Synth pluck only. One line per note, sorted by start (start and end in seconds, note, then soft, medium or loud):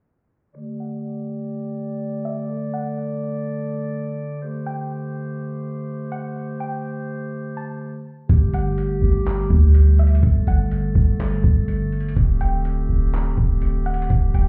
0.80 1.48 F#5 medium
2.25 2.48 E5 medium
2.74 3.42 F#5 medium
4.66 5.35 G5 medium
6.12 6.35 F#5 medium
6.60 7.53 G5 medium
7.57 8.25 A5 medium
8.54 9.22 F#5 medium
9.99 10.22 E5 medium
10.48 11.16 F#5 medium
12.41 13.09 G5 medium
13.86 14.09 F#5 medium
14.35 14.48 G5 medium